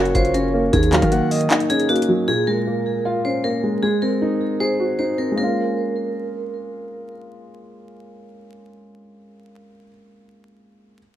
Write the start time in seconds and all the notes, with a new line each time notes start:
Already playing: F#1 F#3 A#3 C#4 F#4 A#4 C#5
0.05 closed hi-hat
0.15 F#1 F4 C5, kick, closed hi-hat
0.25 closed hi-hat
0.34 C#4 A#4, closed hi-hat
0.54 A#3
0.73 D#2 D#3 G#4, kick, closed hi-hat
0.83 closed hi-hat
0.92 F#3 A#4 F5, clap, closed hi-hat
1.02 D#3, kick, closed hi-hat
1.12 A#3 F#5, closed hi-hat
1.31 D#5, open hi-hat
1.41 closed hi-hat
1.50 D#4, clap, closed hi-hat
1.60 closed hi-hat
1.70 C#4 G#4, closed hi-hat
1.80 closed hi-hat
1.89 A#3 F#4, closed hi-hat
1.96 closed hi-hat
2.02 closed hi-hat
2.09 F#3
2.28 A#2 G#4
2.47 G#3 A#4
2.67 A#3
3.05 F4
3.25 C#4 C5
3.44 A#3 A#4
3.64 G#3
3.83 G#3 G#4
4.02 C4 A#4
4.22 D#4
4.60 G#4 C5
4.80 F#4
4.99 D#4 C5
5.18 C4 A#4
5.32 G#3
5.36 A#3 A#4
5.40 C#4 F4